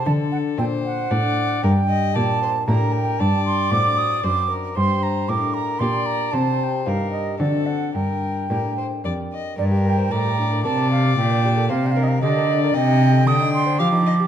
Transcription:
0.05 lute D3, cello D3, violin A4, flute A5
0.32 flute F#5
0.57 lute A#2 C4 D4 A4, cello A#2, violin C5, flute G5
0.85 flute F#5
1.11 lute A2 C4 D4 A4, cello A2, violin D5
1.63 lute G2, cello G2, violin A#4, flute G5
1.89 violin D#5
2.14 lute A#2 A#3 D4 G4, cello A#2, violin D5, flute A5
2.42 violin C5
2.67 cello A2, lute A2 A#3 D4 G4, violin A#4, flute A#5
2.93 flute G5
3.19 lute G2, cello G2, violin D5, flute A5
3.46 flute C6
3.71 cello A2, lute A2 C4 D4 F#4, flute D6
3.98 flute D#6
4.23 cello F#2, lute F#2 C4 D4 F#4, violin C5, flute D6
4.50 violin A#4
4.75 cello G2, lute G2, violin C5, flute C6
5.03 flute A#5
5.29 cello A2, lute A2 A#3 D4 G4, violin A#4, flute D6
5.54 flute A#5
5.79 cello A#2, lute A#2 A#3 D4 G4, violin D5, flute C6
6.06 flute A#5
6.31 cello C3, lute C3, violin C5, flute A5
6.59 flute A5
6.63 flute G5
6.86 lute G2 C4 D#4 G4, cello G2, violin A#4, flute F5
7.12 flute D#5
7.39 lute D3 C4 D4 F#4, cello D3, violin A4, flute D5
7.66 flute F#5
7.94 lute G2, cello G2, violin A#4, flute G5
8.50 cello A2, lute A2 A#3 D4 G4, violin A#4
8.78 violin C5
9.04 lute F2 A#3 D4 G4, cello F2, violin D5
9.32 violin D#5
9.58 lute G2, cello G2, violin A#4, flute D5
9.71 lute G4
9.85 lute A#4, flute G5
9.98 lute C5
10.11 lute A2 A#4, cello A2, violin D5, flute A#5
10.25 lute G4
10.38 lute D4
10.51 lute A#3
10.64 cello C3, lute C3 A#4, violin D5, flute A5
10.78 lute D5
10.91 flute F5
11.04 lute D5
11.17 cello A#2, lute A#2, flute G5
11.32 lute D4
11.45 lute G4
11.58 lute A4
11.69 cello C3, lute C3 G4, violin C5, flute F5
11.84 lute D4, flute G5
11.91 flute F5
11.96 lute A#3, violin A#4
12.03 flute D#5
12.08 flute F5
12.22 cello D3, lute D3 G4, violin D5, flute D#5
12.37 lute A#4
12.50 lute D4
12.63 lute A#4, flute D5
12.74 cello C3, lute C3, violin D#5, flute G5
12.88 lute D#4
13.01 lute G4
13.13 lute A4
13.27 lute D3 G4, cello D3, violin G5, flute D#6
13.40 lute D#4
13.54 flute C6
13.66 lute C4
13.79 lute F3 G4, cello F3, violin F5, flute D6
13.92 lute D#4
14.06 violin D#5
14.20 lute G4

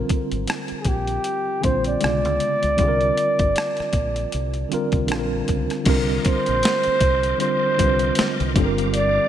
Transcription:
Already playing: tine electric piano D3 G3 C4 F4 A#4
0.09 kick, closed hi-hat
0.32 fingered electric bass G#1, closed hi-hat
0.48 cross-stick, closed hi-hat
0.68 muted fingered electric bass stroke, closed hi-hat
0.81 flugelhorn G#4, closed hi-hat
0.85 fingered electric bass A#1, flugelhorn G4, kick
1.07 closed hi-hat
1.24 closed hi-hat
1.61 fingered electric bass A#1, tine electric piano D3 G3 C4 F4, flugelhorn C5, kick, closed hi-hat
1.66 tine electric piano C5
1.84 flugelhorn D5, closed hi-hat
2.00 fingered electric bass B1, tine electric piano C#3 D3 G#3 B3, closed hi-hat
2.04 tine electric piano F4, cross-stick
2.25 fingered electric bass C#2, closed hi-hat
2.40 closed hi-hat
2.63 fingered electric bass C#2, closed hi-hat
2.77 fingered electric bass C2, tine electric piano D3 G3 C4 F4, kick, closed hi-hat
2.81 tine electric piano G#4
2.88 tine electric piano A#4
3.01 closed hi-hat
3.17 closed hi-hat
3.39 fingered electric bass G1, kick, closed hi-hat
3.56 cross-stick, closed hi-hat
3.77 muted fingered electric bass stroke, cross-stick, closed hi-hat
3.93 fingered electric bass A#1, kick, closed hi-hat
4.16 closed hi-hat
4.32 fingered electric bass C2, closed hi-hat
4.54 closed hi-hat
4.69 tine electric piano D3 G3 C4 F4, muted fingered electric bass stroke, closed hi-hat
4.74 tine electric piano A#4
4.92 fingered electric bass C2, kick, closed hi-hat
5.07 tine electric piano D3 G3 C4 F4, closed hi-hat
5.12 fingered electric bass A#1, tine electric piano A4, cross-stick
5.19 tine electric piano A#4
5.48 fingered electric bass C#2, kick, closed hi-hat
5.70 cross-stick, closed hi-hat
5.84 fingered electric bass C2, tine electric piano D3 G3 C4 F4, tonewheel organ A#4 D#5 C6 D6, kick, closed hi-hat, crash
5.89 tine electric piano A#4
6.25 flugelhorn C5, kick, closed hi-hat
6.46 fingered electric bass A#1, closed hi-hat
6.63 snare, closed hi-hat
6.83 muted fingered electric bass stroke, closed hi-hat
7.01 fingered electric bass C2, kick, closed hi-hat
7.23 closed hi-hat
7.38 tine electric piano D3 G3 C4 F4, flugelhorn C5, closed hi-hat
7.43 tine electric piano C5
7.77 fingered electric bass C2, tine electric piano D3 G3 C4 F4, kick, closed hi-hat
7.82 tine electric piano B4
7.88 tine electric piano C5
7.99 closed hi-hat
8.15 snare, closed hi-hat
8.20 muted fingered electric bass stroke
8.40 fingered electric bass C2, closed hi-hat
8.54 fingered electric bass G1, tine electric piano D3 G3 C4 F4, tonewheel organ G4 F5 A#5 D6, kick, closed hi-hat
8.59 tine electric piano A4
8.66 tine electric piano A#4
8.78 closed hi-hat
8.94 flugelhorn D5, closed hi-hat

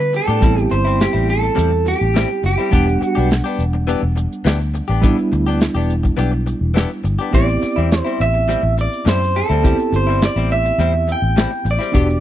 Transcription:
Already playing: fingered electric bass D3, reed electric piano G3 B3 D4 F#4, clean electric guitar B4
0.00 muted clean electric guitar stroke, closed hi-hat
0.13 clean electric guitar A4, muted clean electric guitar stroke, closed hi-hat
0.28 fingered electric bass A2, clean electric guitar B3 D4 G4
0.40 fingered electric bass A1, clean electric guitar A2 G3 C4 E4, reed electric piano G3 B3 C4 E4, kick, closed hi-hat
0.57 muted clean electric guitar stroke, closed hi-hat
0.61 clean electric guitar G4
0.70 fingered electric bass G1, clean electric guitar C5, muted clean electric guitar stroke, closed hi-hat
0.85 clean electric guitar G3 C4 E4
0.99 clean electric guitar G4, muted clean electric guitar stroke, snare, closed hi-hat
1.13 fingered electric bass A1, clean electric guitar G3 C4 E4
1.29 clean electric guitar A4, closed hi-hat
1.43 muted clean electric guitar stroke, closed hi-hat
1.55 fingered electric bass E2, clean electric guitar A2 G3 C4 E4, closed hi-hat
1.71 muted clean electric guitar stroke
1.85 clean electric guitar G4, muted clean electric guitar stroke, closed hi-hat
2.01 fingered electric bass A1
2.14 clean electric guitar A2 G3 C4 E4, snare, closed hi-hat
2.30 muted clean electric guitar stroke
2.43 fingered electric bass F#1, clean electric guitar G4, muted clean electric guitar stroke, closed hi-hat
2.58 clean electric guitar G3 C4 E4, closed hi-hat
2.70 fingered electric bass E1, clean electric guitar E3 B3 D4 G4, reed electric piano G3 B3 D4 F#5, kick, closed hi-hat
2.87 muted clean electric guitar stroke, closed hi-hat
3.01 clean electric guitar F#4, muted clean electric guitar stroke, closed hi-hat
3.15 fingered electric bass B1, clean electric guitar B3 D4 G4
3.30 muted clean electric guitar stroke, snare, closed hi-hat
3.44 clean electric guitar B3 D4 G4, closed hi-hat
3.59 fingered electric bass E1, closed hi-hat
3.73 muted clean electric guitar stroke
3.87 clean electric guitar E3 B3 D4 G4, closed hi-hat
4.02 fingered electric bass E1, muted clean electric guitar stroke
4.16 muted clean electric guitar stroke, closed hi-hat
4.32 closed hi-hat
4.45 fingered electric bass D2, clean electric guitar E3 B3 D4 G4, snare, closed hi-hat
4.60 muted clean electric guitar stroke, closed hi-hat
4.74 muted clean electric guitar stroke, closed hi-hat
4.88 fingered electric bass A1, clean electric guitar B3 D4 G4
5.02 clean electric guitar E3 B3 D4 G4, reed electric piano G3 B3 D4 E4, kick, closed hi-hat
5.17 muted clean electric guitar stroke, closed hi-hat
5.32 fingered electric bass D2, muted clean electric guitar stroke, closed hi-hat
5.47 clean electric guitar B3 D4 G4
5.61 snare, closed hi-hat
5.75 fingered electric bass E1, clean electric guitar B3 D4 G4
5.90 closed hi-hat
6.03 muted clean electric guitar stroke, kick, closed hi-hat
6.17 fingered electric bass B1, clean electric guitar E3 B3 D4 G4, closed hi-hat
6.32 muted clean electric guitar stroke
6.46 muted clean electric guitar stroke, closed hi-hat
6.61 fingered electric bass E1
6.74 clean electric guitar E3 B3 D4 G4, snare, closed hi-hat
6.90 muted clean electric guitar stroke
7.04 fingered electric bass G1, muted clean electric guitar stroke, closed hi-hat
7.19 clean electric guitar B3 D4 G4, closed hi-hat
7.31 fingered electric bass A1, clean electric guitar A2 G3 C4 E4 D5, reed electric piano B3 C4 E4 G4, kick, closed hi-hat
7.48 muted clean electric guitar stroke, closed hi-hat
7.62 muted clean electric guitar stroke, muted fingered electric bass stroke, snare, closed hi-hat
7.76 fingered electric bass E2, clean electric guitar G3 C4 E4
7.90 muted clean electric guitar stroke, snare, closed hi-hat
7.98 clean electric guitar C5
8.04 clean electric guitar G3 C4 E4, closed hi-hat
8.20 fingered electric bass A1, clean electric guitar E5, closed hi-hat
8.34 muted clean electric guitar stroke
8.48 clean electric guitar A2 G3 C4 E4, closed hi-hat
8.62 fingered electric bass A1, muted clean electric guitar stroke
8.77 clean electric guitar D5, muted clean electric guitar stroke, closed hi-hat
8.93 closed hi-hat
9.05 fingered electric bass F#2, clean electric guitar A2 G3 C4 E4 C5, snare, closed hi-hat
9.22 muted clean electric guitar stroke, snare, closed hi-hat
9.35 clean electric guitar A4, muted clean electric guitar stroke, closed hi-hat
9.49 fingered electric bass D2, clean electric guitar G3 C4 E4
9.62 clean electric guitar A2 G3 C4 E4, reed electric piano B3 C4 E4 G4, kick, closed hi-hat
9.78 muted clean electric guitar stroke, closed hi-hat
9.93 fingered electric bass G1, clean electric guitar C5, muted clean electric guitar stroke, closed hi-hat
10.07 clean electric guitar G3 C4 E4
10.22 clean electric guitar D5, muted clean electric guitar stroke, snare, closed hi-hat
10.36 fingered electric bass A1, clean electric guitar G3 C4 E4
10.51 clean electric guitar E5, closed hi-hat
10.65 muted clean electric guitar stroke, closed hi-hat
10.78 fingered electric bass E2, clean electric guitar A2 G3 C4 E4, closed hi-hat
10.94 muted clean electric guitar stroke
11.07 muted clean electric guitar stroke, closed hi-hat
11.12 clean electric guitar G5
11.22 fingered electric bass A1
11.36 clean electric guitar A2 G3 C4 E4, snare, closed hi-hat
11.51 muted clean electric guitar stroke
11.65 fingered electric bass A1, muted clean electric guitar stroke, closed hi-hat
11.71 clean electric guitar D5
11.79 clean electric guitar G3 C4 E4, snare, closed hi-hat
11.92 fingered electric bass E1, clean electric guitar E3 B3 D4 G4, reed electric piano B3 D4 F#4 G4, kick, closed hi-hat
12.09 muted clean electric guitar stroke, closed hi-hat

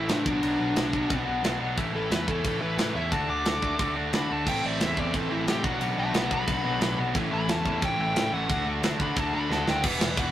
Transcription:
0.08 picked electric bass A2, distorted electric guitar A2 E3 A3 C4 E4, lead electric guitar D4, snare, ride
0.26 picked electric bass B1, distorted electric guitar B2 F#3 B3 D4 F#4, lead electric guitar D4, kick
0.42 picked electric bass B1, distorted electric guitar B2 F#3 B3 D4 F#4, ride
0.59 picked electric bass B1, distorted electric guitar B2 F#3 B3 D4 F#4
0.75 picked electric bass B1, distorted electric guitar B2 F#3 B3 D4 F#4, snare, ride
0.93 distorted electric guitar B2 F#3 B3 D4 F#4, kick
1.10 picked electric bass B1, distorted electric guitar B2 F#3 B3 D4 F#4, kick, ride
1.26 picked electric bass B1, distorted electric guitar B2 F#3 B3 D4 F#4
1.43 picked electric bass B1, distorted electric guitar B2 F#3 B3 D4 F#4, snare, ride
1.60 picked electric bass B1, distorted electric guitar B2 F#3 B3 D4 F#4
1.77 picked electric bass A1, distorted electric guitar A2 E3 A3 C#4 E4, kick, ride
1.93 picked electric bass A1, distorted electric guitar A2 E3 A3 C#4 E4, lead electric guitar A4
2.10 picked electric bass E2, distorted electric guitar A2 E3 A3 C#4 E4, lead electric guitar B4, snare, ride
2.27 picked electric bass E2, distorted electric guitar A2 E3 A3 C#4 E4, lead electric guitar A4, kick
2.43 picked electric bass A1, distorted electric guitar A2 E3 A3 C#4 E4, kick, ride
2.60 picked electric bass A1, distorted electric guitar A2 E3 A3 C#4 E4, lead electric guitar B4
2.77 distorted electric guitar A2 E3 A3 C#4 E4, picked electric bass A2, snare, ride
2.94 picked electric bass E2, distorted electric guitar A2 E3 A3 C#4 E4, lead electric guitar E5
3.11 picked electric bass D2, distorted electric guitar D3 A3 D4 F#4, lead electric guitar A5, kick, ride
3.28 picked electric bass D2, distorted electric guitar D3 A3 D4 F#4, lead electric guitar D6
3.45 picked electric bass D2, distorted electric guitar D3 A3 D4 F#4, snare, ride
3.62 distorted electric guitar D3 A3 D4 F#4, kick
3.79 picked electric bass D2, distorted electric guitar D3 A3 D4 F#4, kick, ride
3.95 picked electric bass D2, distorted electric guitar D3 A3 D4 F#4
4.12 picked electric bass D2, distorted electric guitar D3 A3 D4 F#4, lead electric guitar B5, snare, ride
4.29 picked electric bass D2, distorted electric guitar D3 A3 D4 F#4, lead electric guitar A5
4.46 picked electric bass A1, distorted electric guitar A2 E3 A3 C4 E4 A4, lead electric guitar G5, kick, crash
4.63 picked electric bass A1, distorted electric guitar A2 E3 A3 C4 E4, lead electric guitar D5
4.79 picked electric bass E2, distorted electric guitar A2 E3 A3 C4 E4, lead electric guitar E5, snare, ride
4.95 picked electric bass E2, distorted electric guitar A2 E3 A3 C4 E4 A4, lead electric guitar D5, kick
5.13 picked electric bass A1, distorted electric guitar A2 E3 A3 C4 E4, lead electric guitar A4, kick, ride
5.30 picked electric bass A1, distorted electric guitar A2 E3 A3 C4 E4, lead electric guitar E4
5.47 picked electric bass A2, distorted electric guitar A2 E3 A3 C4 E4 A4, lead electric guitar G4, snare, ride
5.63 picked electric bass B1, distorted electric guitar B2 F#3 B3 D4 F#4, lead electric guitar F#4, kick
5.80 picked electric bass B1, distorted electric guitar B2 F#3 B3 D4 F#4, ride
5.97 picked electric bass B1, distorted electric guitar B2 F#3 B3 D4 F#4, lead electric guitar E5 A5
6.13 picked electric bass B1, distorted electric guitar B2 F#3 B3 D4 F#4, lead electric guitar F#5 B5, snare, ride
6.31 distorted electric guitar B2 F#3 B3 D4 F#4, lead electric guitar B5, kick
6.47 picked electric bass B1, distorted electric guitar B2 F#3 B3 D4 F#4, kick, ride
6.64 picked electric bass B1, distorted electric guitar B2 F#3 B3 D4 F#4
6.81 picked electric bass B1, distorted electric guitar B2 F#3 B3 D4 F#4, snare, ride
6.97 picked electric bass B1, distorted electric guitar B2 F#3 B3 D4 F#4
7.14 picked electric bass A1, distorted electric guitar A2 E3 A3 C#4 E4, kick, ride
7.30 picked electric bass A1, distorted electric guitar A2 E3 A3 C#4 E4, lead electric guitar B5
7.48 picked electric bass E2, distorted electric guitar A2 E3 A3 C#4 E4, lead electric guitar A5, snare, ride
7.64 picked electric bass E2, distorted electric guitar A2 E3 A3 C#4 E4, kick
7.81 picked electric bass A1, distorted electric guitar A2 E3 A3 C#4 E4, lead electric guitar G5, kick, ride
7.97 picked electric bass A1, distorted electric guitar A2 E3 A3 C#4 E4
8.01 lead electric guitar G5
8.14 distorted electric guitar A2 E3 A3 C#4 E4, picked electric bass A2, snare, ride
8.31 picked electric bass A1, distorted electric guitar A2 E3 A3 C#4 E4, lead electric guitar F#5
8.48 picked electric bass D2, distorted electric guitar D3 A3 D4 F#4, kick, ride
8.65 picked electric bass D2, distorted electric guitar D3 A3 D4 F#4
8.82 picked electric bass D2, distorted electric guitar D3 A3 D4 F#4, snare, ride
8.99 distorted electric guitar D3 A3 D4 F#4, lead electric guitar B5, kick
9.16 picked electric bass D2, distorted electric guitar D3 A3 D4 F#4, lead electric guitar A5, kick, ride
9.33 picked electric bass D2, distorted electric guitar D3 A3 D4 F#4, lead electric guitar B5
9.49 picked electric bass D2, distorted electric guitar D3 A3 D4 F#4, lead electric guitar B3 B4 A5, snare
9.66 picked electric bass D2, distorted electric guitar D3 A3 D4 F#4, lead electric guitar G5, snare
9.82 picked electric bass E1, overdriven electric guitar E2 B2, distorted electric guitar E3 G3 B3 E4, lead electric guitar B3 B4, kick, crash
10.00 picked electric bass E1, overdriven electric guitar E2 B2, distorted electric guitar E3 G3 B3 E4, snare
10.16 picked electric bass E1, overdriven electric guitar E2 B2, distorted electric guitar E3 G3 B3 E4, lead electric guitar F#5, kick, ride
10.20 lead electric guitar F#4

